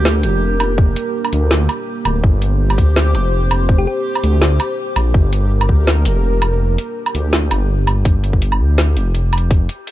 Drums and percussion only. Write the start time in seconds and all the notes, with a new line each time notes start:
0.05 snare
0.23 closed hi-hat
0.60 closed hi-hat, low woodblock
0.78 kick
0.96 closed hi-hat
1.25 closed hi-hat, low woodblock
1.33 closed hi-hat
1.51 snare
1.69 closed hi-hat, low woodblock
2.05 closed hi-hat, low woodblock
2.24 kick
2.42 closed hi-hat
2.70 closed hi-hat, low woodblock
2.78 kick, closed hi-hat
2.96 snare
3.15 closed hi-hat
3.51 closed hi-hat, low woodblock
3.69 kick
4.15 closed hi-hat, low woodblock
4.24 closed hi-hat
4.42 snare
4.60 closed hi-hat, low woodblock
4.96 closed hi-hat, low woodblock
5.14 kick
5.33 closed hi-hat
5.61 closed hi-hat, low woodblock
5.69 kick
5.87 snare
6.05 closed hi-hat
6.42 closed hi-hat, low woodblock
6.78 closed hi-hat
7.06 closed hi-hat, low woodblock
7.15 closed hi-hat
7.33 snare
7.51 closed hi-hat, low woodblock
7.87 closed hi-hat, low woodblock
8.05 kick, closed hi-hat
8.24 closed hi-hat
8.33 kick
8.42 closed hi-hat
8.52 low woodblock
8.78 snare, closed hi-hat
8.97 closed hi-hat
9.15 closed hi-hat
9.33 closed hi-hat, low woodblock
9.38 closed hi-hat
9.51 kick, closed hi-hat
9.69 closed hi-hat
9.87 closed hi-hat